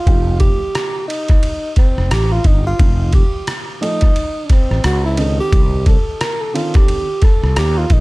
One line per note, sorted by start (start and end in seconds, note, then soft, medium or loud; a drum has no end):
0.00 0.37 F4 medium
0.06 0.50 F1 medium
0.06 0.57 F3 medium
0.06 0.57 A3 medium
0.06 0.58 D#4 medium
0.06 0.58 G4 medium
0.06 kick loud
0.06 ride medium
0.40 1.05 G4 loud
0.40 kick medium
0.40 ride medium
0.75 cross-stick loud
0.75 hi-hat pedal soft
0.75 ride medium
1.08 1.73 D#4 medium
1.08 ride medium
1.28 kick medium
1.28 cross-stick soft
1.28 ride soft
1.43 ride medium
1.76 2.14 C4 medium
1.76 kick medium
1.76 cross-stick soft
1.76 ride medium
1.98 2.09 F1 medium
1.98 cross-stick soft
2.11 2.38 A1 medium
2.11 2.34 G4 medium
2.11 cross-stick loud
2.11 hi-hat pedal soft
2.11 ride medium
2.32 2.48 F4 medium
2.44 2.72 G1 medium
2.44 2.66 D#4 medium
2.44 kick medium
2.44 ride medium
2.67 3.11 F4 loud
2.79 3.23 F1 medium
2.79 3.05 F3 medium
2.79 3.05 A3 medium
2.79 3.06 D#4 medium
2.79 3.06 F4 medium
2.79 kick loud
2.79 ride medium
3.13 3.54 G4 medium
3.13 kick medium
3.13 ride medium
3.47 cross-stick medium
3.47 hi-hat pedal soft
3.47 ride medium
3.81 4.07 F3 medium
3.81 4.08 A3 medium
3.81 4.47 D#4 loud
3.81 4.08 D#4 medium
3.81 4.08 A4 medium
3.81 ride medium
4.01 kick medium
4.01 cross-stick soft
4.01 ride soft
4.16 ride medium
4.46 4.52 D4 medium
4.46 ride medium
4.50 4.84 C4 medium
4.50 kick medium
4.50 cross-stick soft
4.71 4.82 A1 medium
4.71 cross-stick soft
4.84 5.39 C#2 loud
4.84 5.04 F#4 loud
4.84 cross-stick medium
4.84 hi-hat pedal soft
4.84 ride medium
5.05 5.21 E4 medium
5.17 5.60 D#3 medium
5.17 5.60 C4 medium
5.17 5.61 D4 medium
5.17 5.39 D#4 medium
5.17 5.61 A4 medium
5.17 ride medium
5.40 5.84 G4 loud
5.53 5.96 C2 loud
5.53 kick loud
5.53 ride medium
5.86 6.22 A4 medium
5.86 kick medium
5.86 ride medium
6.21 6.42 A#4 medium
6.21 cross-stick loud
6.21 hi-hat pedal soft
6.21 ride medium
6.41 6.56 A4 medium
6.53 7.04 D#3 medium
6.53 7.05 C4 medium
6.53 7.05 D4 medium
6.53 6.77 F4 medium
6.53 7.06 A4 medium
6.53 ride medium
6.74 7.25 G4 loud
6.74 kick medium
6.74 cross-stick soft
6.74 ride soft
6.88 ride medium
7.22 7.60 A4 medium
7.22 kick medium
7.22 cross-stick soft
7.22 ride soft
7.43 7.54 C2 medium
7.43 cross-stick soft
7.56 7.84 D#2 medium
7.56 7.79 G4 loud
7.56 cross-stick loud
7.56 hi-hat pedal soft
7.56 ride medium
7.78 7.94 F4 medium
7.90 8.00 A#1 medium
7.90 8.00 D#4 medium
7.90 kick medium
7.90 ride medium